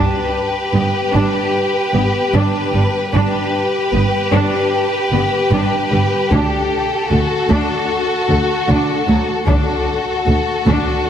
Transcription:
Already playing: viola section D4, violin section G4 B4
0.74 double bass section G1, cello section G2, viola section B3
1.13 double bass section G1, cello section G2, viola section D4
1.94 double bass section G1, cello section G2, viola section B3
2.34 double bass section G1, cello section G2, viola section D4
2.74 double bass section G1, cello section G2, viola section G3
3.14 double bass section G1, cello section G2, viola section D4, violin section G4 B4
3.93 double bass section G1, cello section G2, viola section B3
4.32 double bass section G1, cello section G2, viola section D4
5.12 double bass section G1, cello section G2, viola section B3
5.51 double bass section G1, cello section G2, viola section D4
5.91 double bass section G1, cello section G2, viola section G3
6.31 cello section D2, double bass section D2, viola section D4, violin section A4, taiko
7.11 cello section D2, double bass section D2, viola section A3, violin section F#4
7.50 cello section D2, double bass section D2, viola section D4
8.29 cello section D2, double bass section D2, viola section A3
8.69 cello section D2, double bass section D2, viola section D4
9.08 cello section D2, double bass section D2, viola section F#3
9.47 cello section D2, double bass section D2, viola section D4, violin section F#4 A4, taiko
10.27 cello section D2, double bass section D2, viola section A3
10.66 cello section D2, double bass section D2, viola section D4, taiko

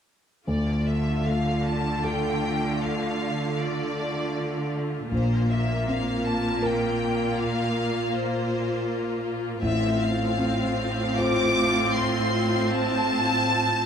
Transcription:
0.47 grand piano D2, cello section D3, viola section A3 F4, violin section D5
0.87 violin section E5
1.26 grand piano A3, violin section F5
1.66 violin section A5
2.03 grand piano F4 A4, violin section G5
2.81 violin section F5
3.59 violin section D5
5.11 grand piano A#1, cello section A#2, viola section A#3 F4, violin section C5
5.50 violin section E5
5.87 grand piano C4, violin section F5
6.25 violin section A5
6.62 grand piano F4 A#4, violin section G5
7.37 violin section F5
8.12 violin section C5
9.62 grand piano A1, cello section A2, viola section C4 F4, violin section E5
10.01 violin section F5
10.38 grand piano C4
11.18 grand piano F4 C5, violin section D6
11.95 violin section C6
12.70 violin section A5

